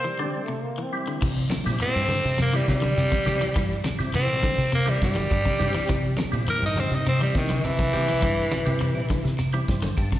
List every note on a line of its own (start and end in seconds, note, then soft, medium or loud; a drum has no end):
0.00 0.59 C4 loud
0.00 0.59 C5 loud
0.04 0.14 E3 medium
0.04 0.24 G3 medium
0.19 0.38 D3 medium
0.19 0.52 G3 medium
0.19 0.52 C4 medium
0.19 0.52 D4 medium
0.24 0.45 G3 medium
0.43 0.65 A3 medium
0.48 0.67 C3 medium
0.63 0.84 A#3 medium
0.78 0.96 E3 medium
0.83 1.22 C4 medium
0.93 1.22 G3 medium
0.93 1.22 C4 medium
0.93 1.22 E4 loud
1.07 1.16 D3 medium
1.22 1.47 C3 loud
1.22 1.40 E3 loud
1.22 kick loud
1.22 crash medium
1.22 shekere medium
1.37 shekere soft
1.50 1.69 C3 medium
1.50 snare medium
1.50 ride bell soft
1.50 high conga loud
1.50 low conga medium
1.50 claves medium
1.50 shekere medium
1.64 1.79 A#2 medium
1.64 2.05 G3 medium
1.64 2.05 C4 medium
1.64 2.05 E4 medium
1.64 snare soft
1.64 ride bell medium
1.64 high conga medium
1.64 shekere soft
1.80 2.38 C4 loud
1.80 muted clean electric guitar stroke medium
1.80 ride bell medium
1.80 shekere medium
1.95 2.20 G2 medium
1.95 claves medium
1.95 shekere soft
2.08 2.27 D3 medium
2.08 open hi-hat medium
2.08 high conga medium
2.08 low conga medium
2.08 shekere medium
2.25 2.62 C3 medium
2.25 shekere soft
2.38 2.47 C3 medium
2.38 2.57 A#3 medium
2.38 snare soft
2.38 ride bell medium
2.38 high conga medium
2.38 claves medium
2.38 shekere medium
2.53 2.71 E3 medium
2.53 2.86 G3 medium
2.53 2.68 G3 medium
2.53 2.86 C4 medium
2.53 2.86 E4 medium
2.53 snare soft
2.53 shekere soft
2.68 2.93 C3 loud
2.68 3.82 G3 loud
2.68 kick medium
2.68 snare medium
2.68 ride bell medium
2.68 shekere medium
2.82 3.00 D3 medium
2.82 ride bell medium
2.82 high conga medium
2.82 shekere soft
2.97 3.10 C3 medium
2.97 ride bell medium
2.97 claves medium
2.97 shekere medium
3.11 3.30 C3 medium
3.11 kick medium
3.11 snare soft
3.11 high conga medium
3.11 shekere soft
3.26 3.39 C3 medium
3.26 3.59 G3 medium
3.26 3.59 C4 medium
3.26 3.59 G4 medium
3.26 ride bell medium
3.26 high conga medium
3.26 low conga medium
3.26 shekere medium
3.41 3.50 E3 medium
3.41 ride bell medium
3.41 claves medium
3.41 shekere soft
3.56 3.81 G2 loud
3.56 3.74 E3 loud
3.56 kick loud
3.56 snare soft
3.56 ride bell medium
3.56 shekere medium
3.71 shekere soft
3.84 4.02 C3 medium
3.84 snare medium
3.84 ride bell medium
3.84 high conga loud
3.84 claves medium
3.84 shekere medium
3.99 4.30 C3 medium
3.99 4.38 G3 medium
3.99 4.38 C4 medium
3.99 4.38 E4 medium
3.99 snare soft
3.99 ride bell medium
3.99 shekere soft
4.14 4.32 E3 medium
4.14 4.71 C4 loud
4.14 snare soft
4.14 ride bell medium
4.14 shekere loud
4.29 4.42 A#2 loud
4.29 claves medium
4.29 shekere soft
4.42 4.61 D3 medium
4.42 kick medium
4.42 open hi-hat medium
4.42 high conga medium
4.42 low conga medium
4.42 shekere medium
4.58 4.95 C3 loud
4.58 shekere soft
4.72 4.81 C3 medium
4.72 4.90 A#3 medium
4.72 ride bell medium
4.72 claves medium
4.72 shekere medium
4.86 5.05 E3 medium
4.86 5.18 G3 medium
4.86 5.01 G3 medium
4.86 5.19 C4 medium
4.86 5.19 E4 medium
4.86 shekere soft
5.01 5.27 G2 loud
5.01 6.16 G3 loud
5.01 kick medium
5.01 snare medium
5.01 ride bell medium
5.01 shekere medium
5.15 5.34 D3 medium
5.15 snare soft
5.15 ride bell medium
5.15 high conga medium
5.15 shekere soft
5.30 5.44 G2 medium
5.30 kick medium
5.30 ride bell medium
5.30 claves medium
5.30 shekere medium
5.45 5.63 C3 medium
5.45 kick medium
5.45 snare soft
5.45 high conga medium
5.45 shekere soft
5.59 5.73 G2 loud
5.59 5.92 G3 medium
5.59 5.92 C4 medium
5.59 5.92 G4 medium
5.59 open hi-hat medium
5.59 low conga medium
5.59 shekere medium
5.74 5.84 E3 medium
5.74 snare soft
5.74 ride bell medium
5.74 claves medium
5.74 shekere soft
5.89 6.14 C3 loud
5.89 6.07 E3 loud
5.89 kick loud
5.89 ride bell medium
5.89 shekere medium
6.04 shekere soft
6.17 6.36 C3 medium
6.17 snare medium
6.17 ride bell soft
6.17 high conga loud
6.17 low conga medium
6.17 claves medium
6.17 shekere medium
6.32 6.45 A#2 medium
6.32 6.71 G3 medium
6.32 6.71 C4 medium
6.32 6.71 E4 medium
6.32 ride bell medium
6.32 shekere soft
6.47 6.66 E3 medium
6.47 6.62 A#4 loud
6.47 ride bell medium
6.47 shekere loud
6.62 6.87 G2 medium
6.62 6.81 D#4 loud
6.62 claves medium
6.62 shekere soft
6.76 6.95 D3 medium
6.76 6.96 C4 medium
6.76 open hi-hat medium
6.76 high conga medium
6.76 low conga medium
6.76 shekere medium
6.91 7.29 C3 medium
6.91 7.06 D#4 medium
6.91 shekere soft
7.06 7.15 C3 medium
7.06 7.21 C4 medium
7.06 ride bell medium
7.06 claves medium
7.06 shekere medium
7.19 7.39 E3 medium
7.19 7.52 G3 medium
7.19 7.35 G3 medium
7.19 7.52 C4 medium
7.19 7.52 E4 medium
7.19 snare soft
7.19 shekere soft
7.35 7.60 C3 medium
7.35 7.66 D#3 medium
7.35 kick medium
7.35 snare medium
7.35 ride bell medium
7.35 shekere medium
7.49 7.68 D3 medium
7.49 ride bell medium
7.49 high conga loud
7.49 shekere soft
7.64 7.77 C3 loud
7.64 9.35 E3 loud
7.64 ride bell medium
7.64 claves medium
7.64 shekere medium
7.79 7.97 C3 medium
7.79 kick medium
7.79 snare soft
7.79 high conga medium
7.79 shekere soft
7.93 8.06 C3 medium
7.93 8.25 G3 medium
7.93 8.25 C4 medium
7.93 8.25 G4 medium
7.93 ride bell medium
7.93 low conga medium
7.93 shekere medium
8.08 8.17 E3 medium
8.08 snare soft
8.08 ride bell medium
8.08 claves medium
8.08 shekere soft
8.22 8.47 G2 loud
8.22 8.40 E3 medium
8.22 kick loud
8.22 ride bell medium
8.22 shekere medium
8.37 shekere soft
8.51 8.70 C3 medium
8.51 snare medium
8.51 ride bell medium
8.51 high conga loud
8.51 claves medium
8.51 shekere medium
8.65 8.95 C3 medium
8.65 9.04 G3 loud
8.65 9.04 C4 medium
8.65 9.04 E4 loud
8.65 ride bell medium
8.65 shekere soft
8.81 8.99 E3 medium
8.81 ride bell medium
8.81 shekere medium
8.95 9.08 A#2 medium
8.95 claves medium
8.95 shekere soft
9.10 9.28 D3 medium
9.10 kick medium
9.10 open hi-hat medium
9.10 high conga medium
9.10 low conga medium
9.10 shekere medium
9.25 9.62 C3 loud
9.25 snare soft
9.25 shekere soft
9.38 9.48 C3 medium
9.38 ride bell medium
9.38 claves medium
9.38 shekere medium
9.53 9.72 E3 medium
9.53 9.86 G3 medium
9.53 9.86 C4 medium
9.53 9.86 E4 loud
9.53 shekere soft
9.68 9.93 G2 loud
9.68 9.95 C5 medium
9.68 kick medium
9.68 snare medium
9.68 ride bell soft
9.68 shekere medium
9.82 10.01 D3 medium
9.82 snare soft
9.82 ride bell medium
9.82 high conga loud
9.82 shekere soft
9.97 10.10 G2 medium
9.97 10.20 A5 medium
9.97 kick medium
9.97 ride bell medium
9.97 claves medium
9.97 shekere medium
10.12 10.20 C3 medium
10.12 kick medium
10.12 snare soft
10.12 high conga medium
10.12 shekere soft